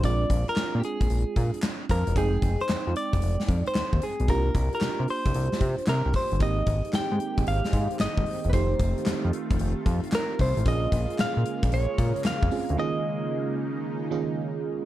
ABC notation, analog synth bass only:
X:1
M:4/4
L:1/16
Q:"Swing 16ths" 1/4=113
K:Cm
V:1 name="Analog synth bass" clef=bass
B,,,2 B,,, z B,, B,, z B,,, B,,, z B,, z3 F,, =E,,, | F,,,2 F,,, z F,, F,, z F,,, F,,, z F,, z E,, E,, z =B,,, | C,,2 C,, z C, C, z C,, C,, z C, z C, C,, z G,,, | [K:Ab] A,,,2 A,,, z A,, A,, z A,,, A,,, z A,, z A,,, A,,, z =E,,, |
F,,,2 F,,, z F,, F,, z F,,, F,,, z F,, z3 C,, =A,,, | B,,,2 B,,, z B,, B,, z B,,, B,,, z B,, z F,, F,, z =D,, | z16 |]